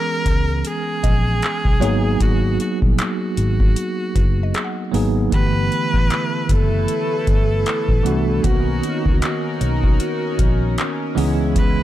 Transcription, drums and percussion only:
0.26 kick, closed hi-hat
0.65 closed hi-hat
1.04 kick, closed hi-hat
1.42 clap, closed hi-hat
1.65 kick
1.82 closed hi-hat
2.21 kick, closed hi-hat
2.60 closed hi-hat
2.82 kick
2.98 clap, closed hi-hat
3.37 closed hi-hat
3.60 kick
3.76 closed hi-hat
4.16 kick, closed hi-hat
4.54 clap, closed hi-hat
4.94 open hi-hat
5.32 kick, closed hi-hat
5.72 closed hi-hat
5.94 kick
6.10 clap, closed hi-hat
6.49 kick, closed hi-hat
6.88 closed hi-hat
7.27 kick, closed hi-hat
7.66 clap, closed hi-hat
7.89 kick
8.06 closed hi-hat
8.44 kick, closed hi-hat
8.83 closed hi-hat
9.06 kick
9.22 clap, closed hi-hat
9.61 closed hi-hat
9.84 kick
10.00 closed hi-hat
10.39 kick, closed hi-hat
10.78 clap, closed hi-hat
11.18 open hi-hat
11.56 kick, closed hi-hat

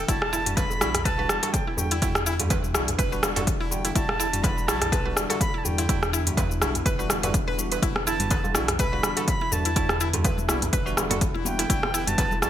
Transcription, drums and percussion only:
0.08 kick, closed hi-hat, shaker
0.22 cross-stick
0.33 djembe tone, shaker
0.46 closed hi-hat, mid tom, shaker
0.57 kick, closed hi-hat, djembe slap, shaker
0.70 djembe tone, shaker
0.81 cross-stick, shaker
0.95 cross-stick, closed hi-hat, mid tom, shaker
1.05 kick, closed hi-hat, shaker
1.18 djembe tone
1.29 cross-stick, shaker
1.43 closed hi-hat, djembe slap, shaker
1.54 kick, closed hi-hat, djembe tone, shaker
1.77 djembe bass, shaker
1.91 closed hi-hat, shaker
2.02 kick, closed hi-hat, djembe tone, shaker
2.15 cross-stick, shaker
2.26 shaker
2.40 closed hi-hat, mid tom, djembe tone, shaker
2.50 kick, closed hi-hat, djembe slap, shaker
2.64 shaker
2.75 cross-stick, shaker
2.88 closed hi-hat, mid tom, djembe tone, shaker
2.99 kick, closed hi-hat, shaker
3.13 shaker
3.23 cross-stick, djembe slap, djembe tone, shaker
3.36 closed hi-hat, mid tom, djembe slap, djembe bass, shaker
3.47 kick, closed hi-hat, shaker
3.71 djembe tone, shaker
3.85 closed hi-hat, djembe slap, shaker
3.96 kick, closed hi-hat, shaker
4.09 cross-stick, djembe tone
4.20 shaker
4.33 closed hi-hat, mid tom, shaker
4.44 kick, closed hi-hat, djembe slap, shaker
4.57 djembe tone, shaker
4.68 cross-stick, shaker
4.82 cross-stick, closed hi-hat, mid tom, shaker
4.92 kick, closed hi-hat, djembe tone, shaker
5.17 cross-stick, shaker
5.30 closed hi-hat, djembe slap, shaker
5.41 kick, closed hi-hat, djembe tone, shaker
5.65 djembe bass, shaker
5.78 closed hi-hat, djembe tone, shaker
5.89 kick, closed hi-hat, shaker
6.03 cross-stick, shaker
6.14 shaker
6.27 closed hi-hat, mid tom, djembe tone, shaker
6.37 kick, closed hi-hat, djembe slap, shaker
6.51 shaker
6.62 cross-stick, djembe tone, shaker
6.75 closed hi-hat, mid tom, shaker
6.86 kick, closed hi-hat, shaker
7.00 shaker
7.10 cross-stick, djembe slap, djembe tone, shaker
7.23 closed hi-hat, mid tom, djembe slap, djembe bass, shaker
7.34 kick, closed hi-hat, shaker
7.47 djembe tone
7.59 shaker
7.72 closed hi-hat, djembe slap, shaker
7.82 kick, closed hi-hat, high conga, shaker
7.96 cross-stick, muted conga, high conga
8.07 djembe tone, shaker
8.20 closed hi-hat, mid tom, low conga, shaker
8.30 kick, closed hi-hat, muted conga, djembe slap, shaker
8.44 djembe tone, low conga, shaker
8.55 cross-stick, high conga, shaker
8.68 cross-stick, closed hi-hat, mid tom, muted conga, shaker
8.79 kick, closed hi-hat, shaker
8.93 djembe tone
9.03 cross-stick, muted conga, shaker
9.17 closed hi-hat, djembe slap, shaker
9.28 kick, closed hi-hat, djembe tone, shaker
9.41 muted conga
9.52 djembe bass, shaker
9.65 closed hi-hat, shaker
9.76 kick, closed hi-hat, high conga, djembe tone, shaker
9.89 cross-stick, muted conga, high conga, shaker
10.00 shaker
10.13 closed hi-hat, mid tom, djembe tone, shaker
10.24 kick, closed hi-hat, djembe slap, muted conga, shaker
10.38 low conga, shaker
10.49 cross-stick, high conga, shaker
10.62 closed hi-hat, mid tom, muted conga, djembe tone, shaker
10.73 kick, closed hi-hat, shaker
10.87 shaker
10.97 cross-stick, djembe slap, muted conga, djembe tone, shaker
11.11 closed hi-hat, mid tom, djembe slap, high conga, djembe bass, shaker
11.21 kick, closed hi-hat, high conga, shaker
11.35 muted conga
11.45 high conga, djembe tone, shaker
11.59 closed hi-hat, djembe slap, shaker
11.70 kick, closed hi-hat, high conga, shaker
11.83 cross-stick, muted conga, djembe tone, high conga
11.94 shaker
12.07 closed hi-hat, mid tom, low conga, shaker
12.18 kick, closed hi-hat, muted conga, djembe slap, shaker
12.31 djembe tone, low conga, shaker
12.42 cross-stick, high conga, shaker

